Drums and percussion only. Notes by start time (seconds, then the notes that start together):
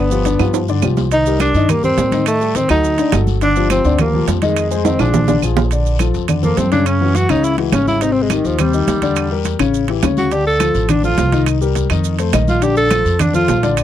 0.11 high conga, maracas
0.25 high conga, high timbale, low timbale, short guiro, maracas
0.39 high conga, high timbale, short guiro, claves, maracas
0.54 high conga, high timbale, long guiro, maracas
0.68 high conga, maracas
0.82 high conga, low timbale, short guiro, claves, maracas
0.97 high conga, low timbale, short guiro, maracas
1.11 high timbale, long guiro, maracas
1.26 high conga, maracas
1.40 high conga, high timbale, low timbale, short guiro, claves, maracas
1.54 short guiro, maracas
1.69 high conga, low conga, high timbale, long guiro, claves, maracas
1.83 high conga, low conga, maracas
1.98 high conga, high timbale, low timbale, short guiro, maracas
2.11 high conga, high timbale, short guiro, maracas
2.26 high conga, high timbale, long guiro, claves, maracas
2.40 high conga, maracas
2.55 high conga, high timbale, low timbale, short guiro, maracas
2.69 high conga, high timbale, short guiro, claves, maracas
2.83 high conga, long guiro, maracas
2.98 high conga, high timbale, maracas
3.12 high conga, high timbale, low timbale, short guiro, claves, maracas
3.27 high conga, short guiro, maracas
3.41 high conga, high timbale, long guiro, maracas
3.56 high conga, maracas
3.70 high conga, high timbale, low timbale, short guiro, claves, maracas
3.84 high conga, short guiro, maracas
3.99 high conga, low conga, high timbale, long guiro, claves, maracas
4.14 high conga, low conga
4.28 high conga, high timbale, low timbale, short guiro, maracas
4.42 high conga, high timbale, short guiro, maracas
4.56 high timbale, long guiro, claves, maracas
4.71 high conga, maracas
4.85 high conga, high timbale, short guiro, maracas
4.99 high conga, high timbale, short guiro, claves, maracas
5.14 low conga, low timbale, long guiro, maracas
5.28 low conga, low timbale, maracas
5.42 short guiro, claves, maracas
5.57 low conga, low timbale, short guiro, maracas
5.71 high conga, high timbale, long guiro, maracas
5.86 high conga, maracas
5.99 high conga, high timbale, low timbale, short guiro, claves, maracas
6.14 high conga, short guiro, maracas
6.28 high conga, low conga, high timbale, long guiro, claves, maracas
6.43 high conga, low conga, maracas
6.57 high conga, high timbale, low timbale, short guiro, maracas
6.72 high conga, high timbale, short guiro, maracas
6.86 high conga, high timbale, long guiro, claves, maracas
7.01 high conga
7.15 high conga, high timbale, low timbale, short guiro, maracas
7.29 high timbale, short guiro, claves, maracas
7.44 high conga, long guiro, maracas
7.58 high conga, high timbale
7.72 high conga, high timbale, low timbale, short guiro, claves, maracas
7.87 high conga, short guiro, maracas
8.01 high conga, high timbale, long guiro, maracas
8.16 high conga
8.30 high conga, high timbale, low timbale, short guiro, claves, maracas
8.45 high conga, short guiro, maracas
8.59 high conga, low conga, high timbale, long guiro, claves, maracas
8.73 high conga, maracas
8.87 high conga, high timbale, low timbale, short guiro, maracas
9.02 high conga, high timbale, short guiro, maracas
9.16 high conga, high timbale, long guiro, claves, maracas
9.31 high conga
9.45 high conga, high timbale, low timbale, short guiro, maracas
9.59 high timbale, short guiro, claves, maracas
9.74 high conga, long guiro, maracas
9.88 high conga, high timbale
10.03 high conga, high timbale, low timbale, short guiro, claves, maracas
10.17 high conga, short guiro, maracas
10.31 high conga, high timbale, long guiro, maracas
10.46 high conga
10.60 high conga, high timbale, low timbale, short guiro, claves, maracas
10.74 high conga, short guiro, maracas
10.89 high conga, low conga, high timbale, long guiro, claves, maracas
11.04 high conga, maracas
11.18 high conga, high timbale, low timbale, short guiro, maracas
11.32 high conga, high timbale, short guiro, maracas
11.46 high conga, high timbale, long guiro, claves, maracas
11.61 high conga, maracas
11.75 high conga, high timbale, low timbale, short guiro, maracas
11.90 high conga, high timbale, short guiro, claves, maracas
12.04 high conga, long guiro, maracas
12.19 high conga, high timbale, maracas
12.33 high conga, high timbale, low timbale, short guiro, claves, maracas
12.48 high conga, short guiro, maracas
12.62 high conga, high timbale, long guiro, maracas
12.76 high conga, maracas
12.91 high conga, high timbale, low timbale, short guiro, claves, maracas
13.06 short guiro, maracas
13.19 high conga, low conga, high timbale, long guiro, claves, maracas
13.34 high conga, low conga, maracas
13.48 high conga, high timbale, low timbale, short guiro, maracas
13.63 high conga, high timbale, short guiro, maracas
13.77 high timbale, long guiro, claves, maracas